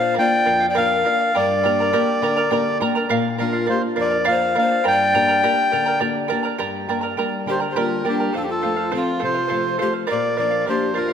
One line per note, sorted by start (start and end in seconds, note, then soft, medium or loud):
0.00 0.16 A#2 medium
0.00 0.17 A#3 medium
0.00 0.18 D4 soft
0.00 0.18 F4 medium
0.00 0.15 C5 medium
0.00 0.14 D5 soft
0.00 0.15 F5 medium
0.00 0.15 F5 soft
0.14 0.65 A#3 soft
0.14 0.44 A#4 medium
0.14 0.45 D5 medium
0.14 0.46 F5 medium
0.18 0.65 D4 soft
0.18 0.65 F4 medium
0.18 0.66 D5 medium
0.18 0.66 G5 loud
0.45 1.04 F2 medium
0.45 0.61 A#4 medium
0.45 0.61 D5 medium
0.45 0.59 F5 medium
0.60 0.74 D5 soft
0.60 0.75 F5 medium
0.70 0.76 D5 medium
0.70 0.77 G5 medium
0.75 1.04 A#3 medium
0.75 1.04 D4 soft
0.75 1.05 F4 medium
0.75 1.03 A#4 medium
0.75 1.31 A#4 medium
0.75 1.05 D5 medium
0.75 1.05 F5 medium
0.75 1.37 F5 loud
1.05 1.29 A#3 soft
1.05 1.29 D4 soft
1.05 1.29 F4 medium
1.05 1.20 A#4 medium
1.05 1.20 D5 medium
1.05 1.18 F5 medium
1.19 1.34 D5 soft
1.19 1.34 F5 soft
1.35 1.92 G2 medium
1.35 1.63 A#4 medium
1.35 2.79 A#4 medium
1.35 1.64 D5 medium
1.35 2.78 D5 medium
1.35 1.62 G5 medium
1.35 1.64 A#5 medium
1.63 1.92 A#3 medium
1.63 1.92 D4 soft
1.63 1.92 G4 medium
1.63 1.79 A#4 medium
1.63 1.79 D5 medium
1.63 1.78 G5 medium
1.63 1.79 A#5 medium
1.80 1.92 A#4 soft
1.80 1.93 D5 soft
1.80 1.93 A#5 soft
1.93 2.40 A#3 soft
1.93 2.40 D4 soft
1.93 2.23 G4 medium
1.93 2.41 G4 medium
1.93 2.22 A#4 medium
1.93 2.22 D5 medium
1.93 2.21 G5 medium
1.93 2.23 A#5 medium
2.22 2.79 D3 medium
2.22 2.36 A#4 medium
2.22 2.36 D5 medium
2.22 2.37 G5 medium
2.22 2.35 A#5 medium
2.37 2.50 A#4 medium
2.37 2.51 D5 medium
2.37 2.52 A#5 medium
2.51 2.81 A#3 soft
2.51 2.81 D4 soft
2.51 2.82 G4 medium
2.51 2.80 A#4 medium
2.51 2.80 D5 medium
2.51 2.79 G5 medium
2.51 2.81 A#5 medium
2.80 3.05 A#3 medium
2.80 3.05 D4 soft
2.80 3.06 G4 medium
2.80 2.96 A#4 medium
2.80 3.09 A#4 medium
2.80 2.95 D5 medium
2.80 2.96 G5 medium
2.80 2.94 A#5 medium
2.95 3.08 A#4 medium
2.95 3.09 D5 medium
2.95 3.10 A#5 medium
3.09 3.67 A#2 medium
3.09 3.37 A#4 medium
3.09 3.38 D5 medium
3.09 3.39 F5 loud
3.38 3.68 A#3 medium
3.38 3.68 D4 soft
3.38 3.67 F4 medium
3.38 3.68 F4 medium
3.38 3.54 A#4 medium
3.38 3.67 A#4 medium
3.38 3.53 D5 medium
3.38 3.52 F5 medium
3.53 3.65 D5 soft
3.53 3.66 F5 medium
3.66 4.16 A#3 soft
3.66 4.16 D4 soft
3.66 4.16 F4 medium
3.66 3.95 A#4 medium
3.66 3.82 C5 medium
3.66 3.95 D5 medium
3.66 3.96 F5 medium
3.71 3.78 G4 medium
3.96 4.55 F2 medium
3.96 4.12 A#4 medium
3.96 4.26 A#4 medium
3.96 4.10 D5 medium
3.96 4.09 F5 medium
4.01 4.27 D5 medium
4.11 4.24 D5 soft
4.11 4.24 F5 medium
4.24 4.55 A#3 soft
4.24 4.56 D4 soft
4.24 4.56 F4 medium
4.24 4.54 A#4 medium
4.24 4.54 D5 medium
4.24 4.55 F5 medium
4.24 4.57 F5 medium
4.30 4.56 C5 medium
4.55 4.80 A#3 soft
4.55 4.80 D4 soft
4.55 4.81 F4 medium
4.55 4.71 A#4 medium
4.55 4.70 D5 medium
4.55 4.68 F5 medium
4.55 4.85 F5 loud
4.61 4.86 C5 medium
4.70 4.84 D5 soft
4.70 4.83 F5 medium
4.84 5.43 G2 medium
4.84 5.13 A#4 medium
4.84 5.14 D5 medium
4.84 5.13 G5 medium
4.84 5.99 G5 loud
4.84 5.13 A#5 medium
4.90 6.01 D5 medium
5.14 5.43 A#3 soft
5.14 5.43 D4 soft
5.14 5.44 G4 medium
5.14 5.29 A#4 medium
5.14 5.28 D5 medium
5.14 5.29 G5 medium
5.14 5.27 A#5 medium
5.28 5.43 A#4 soft
5.28 5.42 D5 soft
5.28 5.43 A#5 soft
5.43 5.91 A#3 soft
5.43 5.91 D4 soft
5.43 5.73 G4 medium
5.43 5.91 G4 medium
5.43 5.70 A#4 medium
5.43 5.72 D5 medium
5.43 5.71 G5 medium
5.43 5.72 A#5 medium
5.72 6.30 D3 medium
5.72 5.86 A#4 medium
5.72 5.85 D5 medium
5.72 5.87 G5 medium
5.72 5.85 A#5 medium
5.86 5.99 A#4 soft
5.86 5.99 D5 medium
5.86 6.00 A#5 medium
6.00 6.30 A#3 soft
6.00 6.30 D4 soft
6.00 6.31 G4 medium
6.00 6.27 A#4 medium
6.00 6.28 D5 medium
6.00 6.27 G5 medium
6.00 6.29 A#5 medium
6.28 6.55 A#3 soft
6.28 6.55 D4 soft
6.28 6.44 A#4 medium
6.28 6.43 D5 medium
6.28 6.44 G5 medium
6.28 6.42 A#5 medium
6.32 6.55 G4 medium
6.43 6.58 A#4 medium
6.43 6.58 D5 medium
6.43 6.59 A#5 medium
6.58 7.17 G2 medium
6.58 6.89 G4 medium
6.58 6.88 A#4 medium
6.58 6.88 D5 medium
6.58 6.88 G5 medium
6.58 6.89 A#5 medium
6.88 7.17 G3 soft
6.88 7.17 A#3 soft
6.88 7.17 D4 medium
6.88 7.02 A#4 medium
6.88 7.02 D5 medium
6.88 7.04 G5 medium
6.88 7.00 A#5 medium
7.01 7.17 A#4 soft
7.01 7.17 D5 soft
7.01 7.17 A#5 medium
7.17 7.65 G3 soft
7.17 7.65 A#3 soft
7.17 7.65 D4 soft
7.17 7.47 A#4 medium
7.17 7.47 D5 medium
7.17 7.46 G5 medium
7.17 7.48 A#5 medium
7.46 8.03 D3 medium
7.46 7.55 G4 medium
7.46 7.60 A#4 medium
7.46 7.60 D5 medium
7.46 7.62 G5 medium
7.46 7.59 A#5 medium
7.51 7.60 C5 medium
7.60 7.75 A#4 soft
7.60 7.75 D5 soft
7.60 7.75 A#5 medium
7.71 7.77 G4 soft
7.71 7.78 C5 medium
7.75 8.04 G3 soft
7.75 8.04 A#3 soft
7.75 8.05 D4 medium
7.75 8.05 F4 medium
7.75 8.05 G4 medium
7.75 8.04 A#4 medium
7.75 8.04 D5 medium
7.75 8.03 G5 medium
7.75 8.05 A#5 medium
7.80 8.08 A#4 medium
8.05 8.29 G3 soft
8.05 8.29 A#3 soft
8.05 8.29 D4 medium
8.05 8.34 D4 medium
8.05 8.34 G4 medium
8.05 8.19 A#4 medium
8.05 8.19 D5 medium
8.05 8.20 G5 medium
8.05 8.19 A#5 medium
8.20 8.32 A#4 soft
8.20 8.35 D5 soft
8.20 8.35 A#5 soft
8.33 8.91 F2 medium
8.33 8.41 F4 medium
8.33 8.60 A4 medium
8.33 8.62 C5 medium
8.33 8.62 F5 medium
8.37 8.42 A4 medium
8.41 8.48 D4 medium
8.41 8.50 G4 medium
8.49 8.90 F4 medium
8.49 8.91 A4 medium
8.62 8.92 F3 soft
8.62 8.92 A3 soft
8.62 8.92 C4 soft
8.62 8.77 A4 medium
8.62 8.76 C5 medium
8.62 8.75 F5 medium
8.76 8.90 C5 soft
8.76 8.91 F5 medium
8.91 9.39 F3 soft
8.91 9.40 A3 soft
8.91 9.40 C4 medium
8.91 9.20 C4 medium
8.91 9.18 A4 medium
8.91 9.19 C5 medium
8.91 9.20 F5 medium
8.97 9.22 F4 medium
9.19 9.79 C3 medium
9.19 9.35 A4 medium
9.19 9.34 C5 medium
9.19 9.33 F5 medium
9.24 9.77 F4 medium
9.24 9.77 C5 medium
9.34 9.47 C5 soft
9.34 9.48 F5 soft
9.48 9.81 F3 soft
9.48 9.81 A3 soft
9.48 9.77 A4 medium
9.48 9.78 C5 medium
9.48 9.78 F5 medium
9.52 9.81 C4 medium
9.78 10.04 F3 soft
9.78 9.88 G4 medium
9.78 9.93 A4 medium
9.78 9.93 C5 medium
9.78 9.92 F5 medium
9.82 10.04 A3 soft
9.82 10.04 C4 medium
9.93 10.09 C5 soft
9.93 10.06 F5 soft
10.07 10.35 A#4 medium
10.07 10.36 A#4 medium
10.07 10.36 D5 medium
10.07 10.36 F5 medium
10.11 10.66 A#2 medium
10.11 10.37 D5 medium
10.37 10.67 F3 soft
10.37 10.68 A#3 soft
10.37 10.68 D4 medium
10.37 10.52 A#4 medium
10.37 10.65 A#4 medium
10.37 10.52 D5 medium
10.37 10.65 D5 medium
10.37 10.49 F5 medium
10.50 10.65 D5 soft
10.50 10.66 F5 soft
10.66 11.13 F3 soft
10.66 11.13 A#3 soft
10.66 11.13 D4 medium
10.66 10.95 G4 medium
10.66 10.93 A#4 soft
10.66 10.98 C5 medium
10.66 10.93 D5 medium
10.66 10.94 F5 medium
10.94 11.13 F4 medium
10.94 11.09 A#4 medium
10.94 11.13 A#4 medium
10.94 11.09 D5 medium
10.94 11.07 F5 medium
10.98 11.13 F2 medium
11.08 11.13 F5 medium